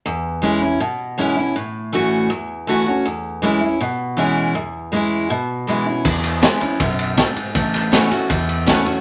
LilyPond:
<<
  \new Staff \with { instrumentName = "Steel-string acoustic guitar" } { \time 4/4 \key e \major \tempo 4 = 160 << { r4 <e gis cis' e'>8 <cis' e'>8 r4 <e gis cis' e'>8 <cis' e'>8 | r4 <e a cis' fis'>4 r4 <e a cis' fis'>8 <cis' fis'>8 | r4 <e gis cis' e'>8 e'8 r4 <e gis cis' e'>4 | r4 <e gis cis' e'>4 r4 <e gis cis' e'>8 <cis' e'>8 |
r4 <e gis cis' e'>8 <cis' e'>8 r2 | r4 <e a cis' fis'>8 <cis' fis'>8 r4 <e a cis' fis'>8 <cis' fis'>8 | } \\ { e,2 b,2 | a,2 e,2 | e,2 b,2 | e,2 b,2 |
e,2 fis,4 gis,4 | a,2 e,2 | } >> }
  \new Staff \with { instrumentName = "Fingered electric bass" } { \clef bass \time 4/4 \key e \major r1 | r1 | r1 | r1 |
e,4. r8 b,,4. r8 | a,,4. r8 e,4. r8 | }
  \new DrumStaff \with { instrumentName = "Drums" } \drummode { \time 4/4 r4 r4 r4 r4 | r4 r4 r4 r4 | r4 r4 r4 r4 | r4 r4 r4 r4 |
<cymc bd>8 cymr8 <cymr sn>8 cymr8 <bd cymr>8 cymr8 <bd cymr sn>8 cymr8 | <bd cymr>8 <cymr sn>8 <cymr sn>8 <cymr sn>8 <bd cymr>8 cymr8 <bd cymr sn>8 cymr8 | }
>>